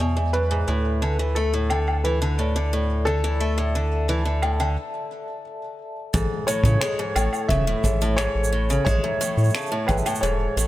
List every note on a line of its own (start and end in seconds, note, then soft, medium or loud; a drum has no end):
0.00 0.65 E2 medium
0.00 0.15 B2 medium
0.00 0.70 D5 medium
0.00 0.70 E5 medium
0.00 0.32 G#5 medium
0.17 0.32 G#2 medium
0.33 0.49 F#2 medium
0.33 1.39 B4 loud
0.51 0.66 G#2 medium
0.68 4.77 D2 medium
0.68 1.00 A2 medium
0.68 0.88 A4 medium
1.02 1.18 D3 medium
1.19 1.35 E3 medium
1.35 1.52 A3 medium
1.35 2.06 A4 medium
1.54 1.69 A2 medium
1.70 2.03 D3 medium
1.70 1.90 A4 medium
1.70 low woodblock medium
1.88 low woodblock medium
2.04 2.20 E3 medium
2.04 2.68 B4 medium
2.22 2.37 D3 medium
2.38 2.54 A2 medium
2.38 2.71 D5 medium
2.56 2.71 D3 medium
2.73 3.05 A2 medium
3.05 3.22 D3 medium
3.05 5.41 A4 loud
3.24 3.39 E3 medium
3.40 3.57 A3 medium
3.40 3.73 E5 medium
3.58 3.73 A2 medium
3.75 4.07 D3 medium
4.08 4.24 E3 medium
4.08 4.41 A5 medium
4.25 4.41 D3 medium
4.42 4.58 A2 medium
4.42 low woodblock medium
4.60 4.75 D3 medium
4.60 low woodblock medium
6.13 6.27 A1 loud
6.13 6.46 G#2 medium
6.13 6.33 A4 medium
6.13 kick loud
6.13 shaker medium
6.47 6.63 A2 medium
6.47 6.79 C#5 loud
6.47 shaker medium
6.64 6.77 A2 medium
6.64 6.80 C#3 medium
6.64 kick medium
6.64 shaker soft
6.81 6.98 G#3 medium
6.81 7.45 C#5 medium
6.81 finger snap loud
6.81 shaker medium
6.99 7.14 G#2 medium
7.16 7.29 A1 loud
7.16 7.48 A2 medium
7.16 7.35 A4 medium
7.16 low woodblock medium
7.16 shaker medium
7.33 low woodblock medium
7.33 shaker soft
7.48 7.75 E1 medium
7.48 7.65 C#3 medium
7.48 8.19 E5 loud
7.48 kick loud
7.48 shaker medium
7.67 7.82 A2 medium
7.84 8.28 A1 medium
7.84 8.00 G#2 medium
7.84 8.16 C#5 medium
7.84 kick medium
7.84 shaker medium
8.01 8.17 A2 medium
8.01 shaker medium
8.17 8.51 G#2 medium
8.17 8.83 C#5 loud
8.17 finger snap medium
8.17 shaker medium
8.35 8.79 A1 medium
8.44 shaker medium
8.53 8.68 A2 medium
8.70 8.85 C#3 medium
8.70 shaker soft
8.85 8.99 A1 loud
8.85 9.03 G#3 medium
8.85 9.91 C#5 medium
8.85 9.18 E5 medium
8.85 kick loud
8.85 shaker medium
9.04 9.19 G#2 medium
9.21 9.53 A2 medium
9.21 shaker loud
9.37 9.50 A2 loud
9.37 shaker soft
9.44 shaker soft
9.49 shaker soft
9.55 9.70 C#3 medium
9.55 9.87 A5 loud
9.55 finger snap loud
9.55 shaker soft
9.61 shaker soft
9.66 shaker soft
9.72 9.87 A2 medium
9.87 10.02 A1 loud
9.87 10.04 G#2 medium
9.87 10.23 B4 medium
9.87 kick medium
9.87 low woodblock medium
9.87 shaker soft
9.98 shaker medium
10.06 10.21 A2 medium
10.06 low woodblock medium
10.06 shaker medium
10.15 shaker medium
10.21 10.48 E1 loud
10.21 10.55 G#2 medium
10.21 10.42 A4 medium
10.21 10.67 C#5 medium
10.21 shaker medium
10.57 10.67 A1 medium
10.57 10.67 A2 medium
10.57 shaker medium